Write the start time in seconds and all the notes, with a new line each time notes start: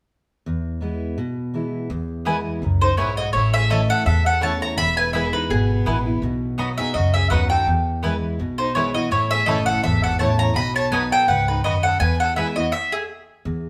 0.46 E2
0.81 E3 G#3 B3 E4
1.18 B2
1.54 E3 G#3 B3 E4
1.90 E2
2.25 E3 G#3 B3 E4 B4 G#5
2.62 C#2 F#2
2.81 D#4 C5
2.97 B1 G#2 B3 E4 B4 C#5 G#5
3.17 F#4 D#5
3.33 A1 A2 E4 C#5
3.54 G#4 E5
3.70 E3 A3 C#4 E4 A4 C#5 D#5 A5
3.89 A4 F#5
4.06 E2 A4 E5
4.26 A4 F#5
4.41 E3 A3 C#4 E4 C#5 A5
4.62 C#5 A#5
4.77 E1 E2 E5 B5
4.97 B4 G#5
5.13 E3 G#3 B3 E4 G#4 B4 E5 G#5
5.33 D#4 B4
5.50 G#1 B2 B3 G#4
5.86 A1 E3 G#3 B3 E4 B4 G#5
6.06 B3 E4
6.22 B1 B2
6.58 F#3 B3 D#4 F#4 D#5 B5
6.78 D#4 F#4 G#4 E5
6.94 C#2 F#2 F#4 D#5
7.14 G#4 E5
7.30 D#2 F#3 B3 D#4 F#4 B4 D#5 F#5 B5
7.50 D#4 F#4 A4 G5
7.67 E2
8.03 E3 G#3 B3 E4 B4 G#5
8.39 B1 B2
8.58 D#4 C5
8.75 E3 G#3 B3 E4 B4 C#5 G#5
8.94 B3 E4 F#4 D#5
9.11 A1 A2 E4 C#5
9.31 G#4 E5
9.46 F#1 E3 A3 C#4 E4 A4 C#5 D#5 A5
9.66 A4 F#5
9.83 G#1 E2 A4 E5
10.04 A4 F#5
10.19 A1 E3 A3 C#4 E4 C#5 A5
10.39 C#5 A#5
10.55 B1 B2 D#5 B5
10.75 C#5 A5
10.91 F#3 B3 D#4 F#4 B4 D#5 G#5 B5
11.12 A4 G5
11.28 C#2 G#2 B4 F#5
11.48 D#4 B4
11.64 D#2 F#2 B3 F#4 D#5 B5
11.83 A4 F#5
12.00 E2 B4 G#5
12.20 A4 F#5
12.36 E3 G#3 B3 E4 G#4 B4 E5 G#5
12.56 B3 E4 F#4 D#5
12.72 E5
12.92 G#4
13.45 E2